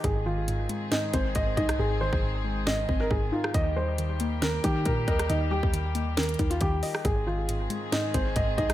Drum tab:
HH |x-------x---x---x---x---x---x-x-|--------------------------------|x-------x---x---x---x---x---x-x-|x-------x---x---xxxxx-x-x---o---|
SD |----------------o-------------r-|----------------o-------------r-|----------------o-------------r-|----------------o-------------r-|
BD |o-------------------o---o---o---|------o-------------o---o-------|o-------------------o---o---o---|------o-------------o---o-------|

HH |x-------x---x---x---x---x---x-x-|
SD |----------------o-------------r-|
BD |o-------------------o---o---o---|